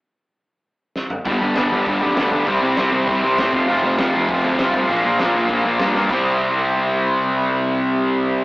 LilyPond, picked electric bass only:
\new Staff \with { instrumentName = "Picked electric bass" } { \clef bass \time 4/4 \key c \major \tempo 4 = 198 r1 | g,,8 g,,8 g,,8 g,,8 g,,8 f,,8 d,8 d,8 | c,8 c,8 c,8 c,8 c,8 c,8 a,8 f,,8 | f,,8 f,,8 f,,8 f,,8 f,,8 d,8 c,8 c,8 |
bes,,8 bes,,8 bes,,8 bes,,8 bes,,8 bes,,8 g,8 g,8 | c,1~ | c,1 | }